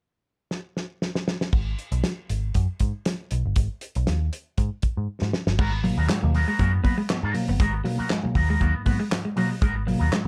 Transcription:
0.51 snare
0.77 snare
1.02 snare
1.15 snare
1.28 snare
1.41 snare
1.52 picked electric bass G#1, kick, crash
1.79 closed hi-hat
1.92 picked electric bass B1, closed hi-hat
2.04 snare, closed hi-hat
2.30 picked electric bass G#1, closed hi-hat
2.54 picked electric bass F#2, kick, closed hi-hat
2.80 picked electric bass G#2, kick, closed hi-hat
3.05 snare, closed hi-hat
3.31 picked electric bass B1, closed hi-hat
3.45 picked electric bass G1
3.56 picked electric bass G#1, kick, closed hi-hat
3.81 closed hi-hat
3.95 picked electric bass B1, closed hi-hat
4.07 picked electric bass D#2, snare, closed hi-hat
4.33 closed hi-hat
4.58 picked electric bass G#2, kick, closed hi-hat
4.82 muted picked electric bass stroke, kick, closed hi-hat
4.97 picked electric bass G#2
5.22 picked electric bass G#2, snare
5.33 snare
5.47 picked electric bass G1, snare
5.58 picked electric bass G#1, tine electric piano G#2, clean electric guitar G#3 B3 F#4 A#4, kick, crash
5.72 muted clean electric guitar stroke
5.83 tine electric piano B2 F#3 A#3, clean electric guitar F#3, muted clean electric guitar stroke, open hi-hat
5.97 picked electric bass D#2, tine electric piano F#3 A#3, clean electric guitar B3 F#4 A#4
6.09 tine electric piano G#2, clean electric guitar G#3, muted clean electric guitar stroke, muted picked electric bass stroke, snare, clap, closed hi-hat
6.22 picked electric bass D#2, tine electric piano B2 F#3 A#3, muted clean electric guitar stroke
6.34 tine electric piano F#3 A#3, clean electric guitar B3 F#4 A#4, open hi-hat
6.48 clean electric guitar G#3 B3 F#4 A#4
6.59 picked electric bass F#2, tine electric piano F#3 A#3, clean electric guitar B3 F#4 A#4, muted clean electric guitar stroke, kick, closed hi-hat
6.73 tine electric piano G#2, muted clean electric guitar stroke
6.84 tine electric piano F#3 A#3, clean electric guitar B3 F#4 B4, kick, open hi-hat
6.97 clean electric guitar G#3, muted clean electric guitar stroke
7.09 tine electric piano G#2, clean electric guitar B3, muted clean electric guitar stroke, snare, clap, closed hi-hat
7.23 picked electric bass G#2, clean electric guitar B3 F#4 A#4, muted clean electric guitar stroke
7.34 tine electric piano B2 F#3 A#3, muted clean electric guitar stroke, open hi-hat
7.48 picked electric bass G1, tine electric piano F#3 A#3, clean electric guitar B3, muted clean electric guitar stroke
7.59 picked electric bass G#1, tine electric piano G#2, clean electric guitar G#3 B3 F#4 A#4, kick, closed hi-hat
7.75 muted clean electric guitar stroke
7.84 tine electric piano B2 F#3 A#3, clean electric guitar F#3, muted clean electric guitar stroke, open hi-hat
7.98 tine electric piano F#3 A#3, clean electric guitar B3 F#4 A#4, muted picked electric bass stroke
8.10 tine electric piano G#2, clean electric guitar G#3, snare, clap, closed hi-hat
8.23 tine electric piano B2 F#3 A#3, muted clean electric guitar stroke, muted picked electric bass stroke
8.35 picked electric bass D#2, tine electric piano F#3 A#3, clean electric guitar B3 F#4 A#4, kick, open hi-hat
8.49 clean electric guitar G#3 B3 F#4 A#4
8.60 picked electric bass D#2, tine electric piano F#3 A#3, clean electric guitar B3 F#4 A#4, muted clean electric guitar stroke, kick, closed hi-hat
8.74 tine electric piano G#2, muted clean electric guitar stroke
8.85 picked electric bass G#2, tine electric piano F#3 A#3, clean electric guitar B3 F#4 B4, kick, open hi-hat
8.99 clean electric guitar G#3, muted clean electric guitar stroke
9.11 tine electric piano G#2, muted clean electric guitar stroke, snare, clap, closed hi-hat
9.25 clean electric guitar G#3
9.36 tine electric piano B2 F#3 A#3, clean electric guitar F#3 B3 F#4 A#4, open hi-hat
9.50 tine electric piano F#3 A#3, muted clean electric guitar stroke
9.61 picked electric bass G#1, tine electric piano G#2, clean electric guitar G#3 B3 F#4 A#4, kick, closed hi-hat
9.75 muted clean electric guitar stroke
9.87 tine electric piano B2 F#3 A#3, clean electric guitar F#3, muted clean electric guitar stroke, open hi-hat
9.99 picked electric bass D#2, tine electric piano F#3 A#3, clean electric guitar B3 F#4 A#4
10.12 tine electric piano G#2, clean electric guitar G#3, muted clean electric guitar stroke, snare, clap, closed hi-hat

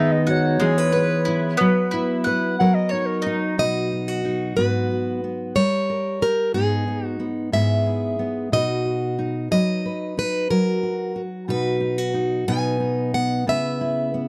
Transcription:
Already playing: steel-string acoustic guitar D#3 G#3 B3 B4, mandolin G#3 D#4, clarinet E5
0.12 clarinet D#5
0.27 steel-string acoustic guitar F#4, clarinet C#5, mandolin F#5
0.60 steel-string acoustic guitar E3 G#4, mandolin G#3
0.78 steel-string acoustic guitar B4
0.92 steel-string acoustic guitar B3, mandolin B4
1.25 mandolin E4, steel-string acoustic guitar E4
1.57 steel-string acoustic guitar F#3 B4, mandolin B3
1.91 mandolin E4, steel-string acoustic guitar E4
2.24 steel-string acoustic guitar B4, mandolin F#5
2.59 steel-string acoustic guitar F#3 A#4, clarinet F#5
2.75 clarinet D#5
2.89 steel-string acoustic guitar D#4, mandolin C#5, clarinet C#5
3.06 clarinet A#4
3.22 mandolin D#4
3.26 steel-string acoustic guitar D#4
3.58 steel-string acoustic guitar B2 D#4 F#4 B4 D#5
3.92 steel-string acoustic guitar D#4
4.08 steel-string acoustic guitar F#4
4.25 steel-string acoustic guitar D#4
4.57 steel-string acoustic guitar G#2 B3 F#4 B4
4.91 steel-string acoustic guitar F#4
5.24 steel-string acoustic guitar B3
5.56 steel-string acoustic guitar G3 G4 A#4 C#5
5.90 steel-string acoustic guitar A#4
6.22 steel-string acoustic guitar G4 A#4
6.54 steel-string acoustic guitar G#2 B3 D#4 G#4
6.88 steel-string acoustic guitar D#4
7.06 steel-string acoustic guitar F#4
7.20 steel-string acoustic guitar B3
7.52 steel-string acoustic guitar G#2 B3 E4 G#4 E5
7.86 steel-string acoustic guitar E4
8.19 steel-string acoustic guitar B3
8.52 steel-string acoustic guitar B2 D#4 F#4 B4 D#5
8.86 steel-string acoustic guitar F#4
9.19 steel-string acoustic guitar D#4
9.51 steel-string acoustic guitar F#3 D#4 B4 D#5
9.86 steel-string acoustic guitar B4
10.17 steel-string acoustic guitar D#4 B4
10.50 steel-string acoustic guitar F#3 F#4 A#4
10.83 steel-string acoustic guitar F#4
11.16 steel-string acoustic guitar F#4
11.48 steel-string acoustic guitar B2 D#4 F#4 B4
11.80 steel-string acoustic guitar D#4
11.98 steel-string acoustic guitar F#4
12.14 steel-string acoustic guitar D#4
12.48 steel-string acoustic guitar B2 B3 D#4 B4 G#5
12.80 steel-string acoustic guitar D#4
13.14 steel-string acoustic guitar B3 F#5
13.47 steel-string acoustic guitar C#3 B3 E4 B4 E5
13.81 steel-string acoustic guitar E4
14.14 steel-string acoustic guitar B3

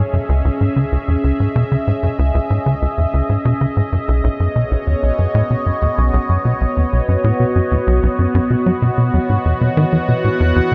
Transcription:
Already playing: analog synth pad C#4 G#4 D#5 E5
0.13 analog synth bass F#2
0.29 analog synth bass C#2
0.45 analog synth bass C#2
0.61 analog synth bass G#2
0.76 analog synth bass C#3
0.92 analog synth bass C#2
1.08 analog synth bass E2
1.24 analog synth bass C#2
1.40 analog synth bass G#2
1.56 analog synth bass B2
1.72 analog synth bass C#3
1.87 analog synth bass G#2
2.03 analog synth bass F#2
2.19 analog synth bass C#2
2.35 analog synth bass C#2
2.50 analog synth bass G#2
2.66 analog synth bass C#3
2.82 analog synth bass C#2
2.98 analog synth bass E2
3.14 analog synth bass C#2
3.29 analog synth bass G#2
3.45 analog synth bass B2
3.61 analog synth bass C#3
3.77 analog synth bass G#2
3.93 analog synth bass F#2
4.08 analog synth bass B1, analog synth pad B3
4.15 analog synth pad C#5
4.24 analog synth bass B1
4.40 analog synth bass F#2, analog synth pad F#4
4.56 analog synth bass B2
4.71 analog synth bass B1
4.87 analog synth bass D#2
5.03 analog synth bass B1
5.19 analog synth bass F#2
5.35 analog synth bass A2
5.50 analog synth bass B2
5.66 analog synth bass F#2
5.82 analog synth bass D#2
5.98 analog synth bass B1
6.14 analog synth bass B1
6.29 analog synth bass F#2
6.45 analog synth bass B2
6.61 analog synth bass B1
6.77 analog synth bass D#2
6.93 analog synth bass B1
7.09 analog synth bass F#2
7.24 analog synth bass A2
7.40 analog synth bass B2
7.56 analog synth bass F#2
7.72 analog synth bass D#2
7.87 analog synth bass B1
8.03 analog synth bass B1
8.19 analog synth bass F#2
8.35 analog synth bass F#2
8.50 analog synth bass B2
8.66 analog synth bass F#3
8.82 analog synth bass B2
8.98 analog synth bass B2
9.14 analog synth bass E2, analog synth pad E3
9.26 analog synth bass G#2, analog synth pad F#5
9.45 analog synth bass E2
9.61 analog synth bass B2
9.77 analog synth bass D#3
9.93 analog synth bass E3
10.09 analog synth bass B2
10.24 analog synth bass A2
10.40 analog synth bass E2
10.56 analog synth bass E2

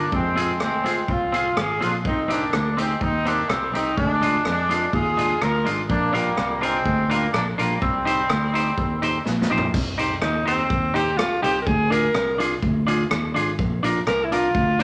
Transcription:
Already playing: horn section A#3 D4
0.12 fingered electric bass F2, horn section G#3 C4, kick
0.36 clean electric guitar C4 F4 G#4, closed hi-hat
0.60 fingered electric bass D2, horn section G#3 C4, cross-stick
0.84 clean electric guitar C4 F4 G#4, closed hi-hat
1.08 fingered electric bass C2, horn section C4 F4, muted clean electric guitar stroke, kick
1.32 clean electric guitar C4 F4 G#4, closed hi-hat
1.56 fingered electric bass G#1, horn section F4 G#4, muted clean electric guitar stroke, cross-stick
1.81 fingered electric bass A#1, clean electric guitar C4 F4 G#4, horn section D4 F4, closed hi-hat
2.05 fingered electric bass C2, horn section C4 D#4, kick
2.28 horn section A#3 D4, clean electric guitar C4 D#4 G4, closed hi-hat
2.53 fingered electric bass D2, cross-stick
2.77 horn section G#3 C4, clean electric guitar C4 D#4 G4, closed hi-hat
3.01 fingered electric bass D#2, horn section C4 D#4, kick
3.25 horn section A#3 D4, clean electric guitar C4 D#4 G4, closed hi-hat
3.49 fingered electric bass C2, horn section G3 C4, muted clean electric guitar stroke, cross-stick
3.73 fingered electric bass C2, clean electric guitar C4 D#4 G4, horn section C4 D#4, closed hi-hat
3.97 fingered electric bass D2, horn section G#3 D4, kick
4.21 clean electric guitar G#3 D4 F4, closed hi-hat
4.45 fingered electric bass F2, horn section G#3 D4, cross-stick
4.69 clean electric guitar G#3 D4 F4, closed hi-hat
4.93 fingered electric bass D#2, horn section F4 G#4, kick
5.17 clean electric guitar G#3 D4 F4, closed hi-hat
5.40 fingered electric bass D2, horn section F4 A#4, muted clean electric guitar stroke, cross-stick
5.65 fingered electric bass G#1, clean electric guitar G#3 D4 F4, closed hi-hat
5.89 fingered electric bass A#1, horn section A#3 D4, kick
6.13 horn section G3 A#3, clean electric guitar D4 F4 A#4, closed hi-hat
6.37 fingered electric bass C2, cross-stick
6.61 horn section G#3 C4, clean electric guitar D4 F4 A#4, closed hi-hat
6.85 fingered electric bass D2, kick
7.10 horn section G3 A#3, clean electric guitar D4 F4 A#4, closed hi-hat
7.32 fingered electric bass A#1, horn section A#3 D4, muted clean electric guitar stroke, cross-stick
7.58 fingered electric bass A#1, horn section G3 A#3, clean electric guitar D4 F4 A#4, closed hi-hat
7.80 fingered electric bass C2, horn section G3 C4, kick
8.05 clean electric guitar D#4 G4 C5, closed hi-hat
8.29 fingered electric bass D2, cross-stick
8.54 clean electric guitar D#4 G4 C5, closed hi-hat
8.78 fingered electric bass D#2, kick
9.02 clean electric guitar D#4 G4 C5, closed hi-hat
9.25 fingered electric bass A#1, muted clean electric guitar stroke, snare
9.42 snare
9.50 fingered electric bass A#1, clean electric guitar D#4 G4 C5
9.58 floor tom
9.74 fingered electric bass C2, kick, crash
9.98 clean electric guitar D#4 G4 C5, closed hi-hat
10.22 fingered electric bass D#2, alto saxophone D#4, cross-stick
10.46 alto saxophone C4, clean electric guitar D#4 G4 C5, closed hi-hat
10.70 fingered electric bass D#2, kick
10.94 clean electric guitar D#4 G4 C5, alto saxophone G4, closed hi-hat
11.17 fingered electric bass C2, alto saxophone F4, muted clean electric guitar stroke, cross-stick
11.42 fingered electric bass C2, clean electric guitar D#4 G4 C5, alto saxophone G4, closed hi-hat
11.62 alto saxophone A#4
11.66 fingered electric bass D2, alto saxophone G#4, kick
11.90 clean electric guitar D4 F4 G#4, alto saxophone A#4, closed hi-hat
12.15 fingered electric bass C2, cross-stick
12.38 clean electric guitar D4 F4 G#4, closed hi-hat
12.62 fingered electric bass D2, kick
12.87 clean electric guitar D4 F4 G#4, closed hi-hat
13.10 fingered electric bass D#2, muted clean electric guitar stroke, cross-stick
13.35 fingered electric bass G#1, clean electric guitar D4 F4 G#4, closed hi-hat
13.59 fingered electric bass A#1, kick
13.83 clean electric guitar D4 F4 A#4, closed hi-hat
14.07 fingered electric bass C2, alto saxophone A#4, cross-stick
14.25 alto saxophone E4
14.32 clean electric guitar D4 F4 A#4, alto saxophone F4, closed hi-hat
14.55 fingered electric bass D2, kick
14.79 clean electric guitar D4 F4, closed hi-hat

